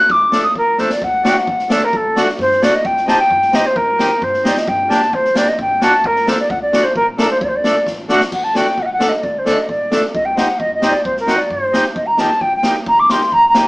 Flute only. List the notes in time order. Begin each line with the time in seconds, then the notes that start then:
Already playing: F#6
0.11 D6
0.43 D#6
0.58 A#4
0.80 C5
0.91 D5
1.04 F#5
1.26 G5
1.37 F#5
1.72 D5
1.84 A#4
1.96 A4
2.41 C5
2.63 D5
2.75 D#5
2.86 G5
3.09 A5
3.20 G5
3.55 D#5
3.66 C5
3.77 A#4
4.24 C5
4.47 D5
4.58 D#5
4.68 G5
4.90 A5
5.14 C5
5.37 D5
5.49 D#5
5.61 G5
5.84 A5
6.06 A#4
6.29 C5
6.39 D5
6.50 F#5
6.62 D5
6.84 C5
6.96 A#4
7.19 A#4
7.30 C5
7.41 D5
7.48 C5
7.56 D5
8.34 F#5
8.44 A5
8.56 G5
8.79 D#5 F#5
8.86 F#5
8.93 F#5
9.09 D#5
9.23 D5
9.39 C5
9.53 D#5
9.70 D5
10.14 D#5
10.25 G5
10.37 F#5
10.59 D#5
10.74 D#5
10.89 D5
11.05 C5
11.20 A#4
11.36 D5
11.51 C5
11.96 D#5
12.07 A#5
12.19 A5
12.41 G5
12.56 G5
12.88 A#5
12.99 D6
13.11 C6
13.33 A#5
13.49 A#5